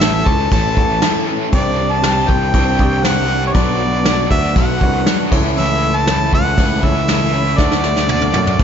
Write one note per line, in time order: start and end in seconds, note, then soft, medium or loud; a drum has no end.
0.00 0.22 A1 loud
0.00 0.26 A2 medium
0.00 0.26 E3 medium
0.00 0.26 A3 medium
0.00 0.25 C#4 medium
0.00 0.30 E4 medium
0.00 0.30 A4 medium
0.00 0.24 A4 medium
0.00 0.30 C#5 medium
0.00 0.28 E5 loud
0.00 0.30 G5 medium
0.00 snare loud
0.00 tambourine medium
0.00 crash medium
0.25 0.49 C#2 medium
0.25 0.51 A3 soft
0.25 0.51 C#4 medium
0.25 0.51 A4 medium
0.25 0.52 A5 medium
0.25 kick medium
0.51 0.75 A1 medium
0.51 0.76 A2 medium
0.51 0.77 E3 medium
0.51 0.77 A3 medium
0.51 0.77 C#4 loud
0.51 0.75 A4 medium
0.51 1.24 A5 medium
0.51 kick loud
0.51 crash medium
0.77 1.00 A1 medium
0.77 1.02 A3 soft
0.77 1.03 C#4 soft
0.77 1.36 E4 medium
0.77 1.02 A4 medium
0.77 1.36 A4 medium
0.77 1.36 C#5 medium
0.77 1.36 F#5 medium
0.77 kick loud
1.01 1.51 A2 medium
1.01 1.27 E3 medium
1.01 1.28 A3 medium
1.01 1.27 C#4 medium
1.01 1.26 A4 medium
1.01 snare loud
1.01 tambourine medium
1.01 crash medium
1.27 1.53 A3 medium
1.27 1.53 C#4 medium
1.27 1.52 A4 medium
1.52 2.24 C2 loud
1.52 1.78 C3 medium
1.52 1.78 G3 medium
1.52 1.78 C4 medium
1.52 2.32 D4 medium
1.52 1.78 D4 medium
1.52 2.32 G4 medium
1.52 1.76 G4 medium
1.52 2.32 C5 medium
1.52 2.32 D5 medium
1.52 1.93 D5 loud
1.52 kick loud
1.52 crash medium
1.77 2.02 C4 soft
1.77 2.02 D4 soft
1.77 2.03 G4 medium
1.92 2.30 A5 loud
2.02 2.28 G3 medium
2.02 2.28 C4 medium
2.02 2.28 D4 medium
2.02 2.26 G4 medium
2.02 snare loud
2.02 tambourine loud
2.02 crash medium
2.27 2.52 C2 medium
2.27 2.53 C4 medium
2.27 2.54 D4 soft
2.27 2.53 G4 medium
2.27 3.06 G5 loud
2.27 kick medium
2.54 2.77 C2 loud
2.54 2.79 C3 medium
2.54 2.79 G3 medium
2.54 2.79 C4 medium
2.54 2.79 D4 loud
2.54 2.77 G4 loud
2.54 kick loud
2.54 crash medium
2.78 3.51 C2 loud
2.78 3.03 C4 soft
2.78 3.38 D4 medium
2.78 3.04 D4 medium
2.78 3.04 G4 medium
2.78 3.38 G4 medium
2.78 3.39 C5 medium
2.78 3.38 D5 medium
2.78 kick loud
3.03 3.53 C3 medium
3.03 3.29 G3 medium
3.03 3.30 C4 medium
3.03 3.29 D4 medium
3.03 3.27 G4 medium
3.03 3.46 F#5 loud
3.03 snare loud
3.03 tambourine medium
3.03 crash medium
3.28 3.56 C4 soft
3.28 3.55 D4 soft
3.28 3.54 G4 medium
3.47 3.55 C#5 medium
3.54 4.26 B1 loud
3.54 3.80 B2 medium
3.54 3.80 F#3 medium
3.54 3.81 A3 medium
3.54 4.06 B3 medium
3.54 4.34 D4 medium
3.54 3.80 D4 medium
3.54 4.34 F#4 medium
3.54 3.79 F#4 medium
3.54 4.34 A4 medium
3.54 4.34 B4 medium
3.54 4.30 D5 medium
3.54 kick loud
3.54 crash medium
3.80 4.05 A3 soft
3.80 4.06 D4 soft
3.80 4.05 F#4 medium
4.05 4.30 F#3 medium
4.05 4.31 A3 medium
4.05 4.33 B3 medium
4.05 4.31 D4 medium
4.05 4.29 F#4 medium
4.05 snare loud
4.05 tambourine loud
4.05 crash medium
4.30 4.54 D2 loud
4.30 4.56 A3 soft
4.30 4.56 B3 medium
4.30 4.57 D4 soft
4.30 4.56 F#4 medium
4.30 4.54 E5 loud
4.30 kick medium
4.56 4.79 B1 loud
4.56 4.81 B2 medium
4.56 4.81 F#3 loud
4.56 4.82 A3 medium
4.56 5.06 B3 medium
4.56 4.82 D4 loud
4.56 4.79 F#4 loud
4.56 5.28 F#5 medium
4.56 kick loud
4.56 crash medium
4.80 5.04 C2 medium
4.80 5.06 A3 soft
4.80 5.32 D4 medium
4.80 5.07 D4 medium
4.80 5.06 F#4 medium
4.80 5.32 F#4 medium
4.80 5.31 A4 medium
4.80 5.32 B4 medium
4.80 kick medium
5.06 5.30 B2 medium
5.06 5.32 F#3 medium
5.06 5.32 A3 medium
5.06 5.30 B3 loud
5.06 5.33 D4 medium
5.06 5.31 F#4 medium
5.06 snare loud
5.06 tambourine loud
5.06 crash medium
5.31 6.28 C#2 loud
5.31 5.55 C#3 medium
5.31 5.56 E3 medium
5.31 5.56 A3 soft
5.31 6.13 C#4 medium
5.31 5.56 C#4 medium
5.31 5.57 E4 medium
5.31 6.13 E4 medium
5.31 6.13 A4 medium
5.31 6.13 C#5 loud
5.31 kick loud
5.31 crash loud
5.56 5.81 C#3 medium
5.56 5.82 E3 medium
5.56 5.82 A3 medium
5.56 5.81 C#4 medium
5.56 5.80 E4 loud
5.56 5.97 E5 loud
5.56 crash medium
5.81 6.07 A3 soft
5.81 6.07 C#4 soft
5.81 6.07 E4 medium
5.96 6.33 A5 loud
6.07 6.32 E3 medium
6.07 6.33 A3 medium
6.07 6.32 C#4 medium
6.07 6.31 E4 medium
6.07 snare loud
6.07 tambourine medium
6.07 crash medium
6.32 6.55 C#2 medium
6.32 6.57 A3 soft
6.32 6.58 C#4 soft
6.32 6.57 E4 medium
6.32 6.86 F#5 loud
6.32 kick medium
6.57 6.81 C#2 loud
6.57 6.83 C#3 medium
6.57 6.83 E3 medium
6.57 6.83 A3 loud
6.57 6.83 C#4 loud
6.57 6.82 E4 medium
6.57 kick loud
6.57 crash medium
6.83 7.55 C#2 medium
6.83 7.08 A3 soft
6.83 7.42 C#4 medium
6.83 7.09 C#4 medium
6.83 7.08 E4 medium
6.83 7.42 E4 medium
6.83 7.42 A4 medium
6.83 7.42 C#5 medium
6.83 7.60 E5 loud
6.83 kick medium
7.08 7.57 C#3 loud
7.08 7.33 E3 medium
7.08 7.34 A3 medium
7.08 7.34 C#4 medium
7.08 7.33 E4 medium
7.08 snare loud
7.08 tambourine medium
7.08 crash medium
7.34 7.58 A3 soft
7.34 7.59 C#4 medium
7.34 7.59 E4 medium
7.58 8.30 D2 loud
7.58 7.84 D3 medium
7.58 7.84 A3 medium
7.58 7.84 C#4 medium
7.58 8.38 D4 medium
7.58 8.09 D4 loud
7.58 8.38 F#4 medium
7.58 7.82 F#4 medium
7.58 8.38 A4 medium
7.58 8.64 D5 loud
7.58 8.38 C#6 medium
7.58 kick loud
7.58 snare medium
7.71 snare medium
7.83 8.08 A3 soft
7.83 8.09 C#4 soft
7.83 8.09 F#4 medium
7.83 snare medium
7.96 snare medium
8.08 8.34 D3 medium
8.08 8.35 A3 medium
8.08 8.34 C#4 medium
8.08 8.33 D4 medium
8.08 8.32 F#4 medium
8.08 high tom medium
8.08 tambourine medium
8.21 high tom medium
8.34 8.57 F#2 loud
8.34 8.59 A3 soft
8.34 8.60 C#4 medium
8.34 8.59 D4 medium
8.34 8.59 F#4 medium
8.34 high tom medium
8.47 mid tom medium
8.59 8.64 D2 medium
8.59 8.64 D3 loud
8.59 8.64 A3 loud
8.59 8.64 D4 medium
8.59 8.64 F#4 medium
8.59 kick loud
8.59 mid tom medium